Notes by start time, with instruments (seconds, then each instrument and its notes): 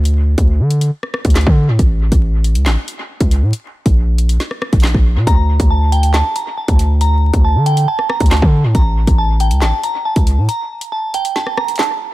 Already playing: 808-style bass D2
0.05 closed hi-hat
0.38 808-style bass D2, kick, closed hi-hat
0.60 808-style bass D3
0.70 closed hi-hat
0.81 closed hi-hat
1.03 cross-stick
1.14 cross-stick
1.25 808-style bass D2, kick, closed hi-hat
1.30 closed hi-hat
1.36 snare, clap, closed hi-hat
1.41 closed hi-hat
1.47 808-style bass D3, kick
1.68 808-style bass A2
1.79 808-style bass A1, kick, closed hi-hat
2.12 808-style bass A1, kick, closed hi-hat
2.44 closed hi-hat
2.55 808-style bass C#2, closed hi-hat
2.66 808-style bass A1, snare, clap
2.88 closed hi-hat
3.21 808-style bass C#2, kick, closed hi-hat
3.31 closed hi-hat
3.42 808-style bass A2
3.53 closed hi-hat
3.86 808-style bass A#1, kick, closed hi-hat
4.18 closed hi-hat
4.29 closed hi-hat
4.40 snare
4.51 cross-stick
4.62 cross-stick
4.73 808-style bass A#1, kick, closed hi-hat
4.80 snare, clap, closed hi-hat
4.87 closed hi-hat
4.94 808-style bass A#1, kick
5.16 808-style bass A#2
5.27 808-style bass D2, synth bell A#5, kick, closed hi-hat
5.60 808-style bass D2, kick, closed hi-hat
5.70 synth bell A5
5.92 synth bell G5, closed hi-hat
6.03 closed hi-hat
6.14 synth bell A5, snare, clap
6.36 synth bell A#5, closed hi-hat
6.58 synth bell A5
6.68 808-style bass D2, kick, closed hi-hat
6.79 closed hi-hat
7.01 synth bell A#5, closed hi-hat
7.33 808-style bass D2, kick, closed hi-hat
7.44 synth bell A5
7.55 808-style bass D3
7.66 synth bell G5, closed hi-hat
7.77 closed hi-hat
7.88 synth bell A5
7.99 cross-stick
8.09 synth bell A#5, cross-stick
8.20 808-style bass D2, kick, closed hi-hat
8.26 closed hi-hat
8.31 synth bell A5, snare, clap, closed hi-hat
8.37 closed hi-hat
8.42 808-style bass D3, kick
8.64 808-style bass A2
8.75 808-style bass A1, synth bell A#5, kick, closed hi-hat
9.07 808-style bass A1, kick, closed hi-hat
9.18 synth bell A5
9.40 synth bell G5, closed hi-hat
9.51 808-style bass C#2, closed hi-hat
9.61 808-style bass A1, synth bell A5, snare, clap
9.83 synth bell A#5, closed hi-hat
10.05 synth bell A5
10.16 808-style bass C#2, kick, closed hi-hat
10.27 closed hi-hat
10.38 808-style bass A2
10.49 synth bell A#5, closed hi-hat
10.81 closed hi-hat
10.92 synth bell A5
11.14 synth bell G5, closed hi-hat
11.25 closed hi-hat
11.36 synth bell A5, snare
11.47 cross-stick
11.57 synth bell A#5, cross-stick
11.68 closed hi-hat
11.76 synth bell A5, snare, clap, closed hi-hat
11.83 closed hi-hat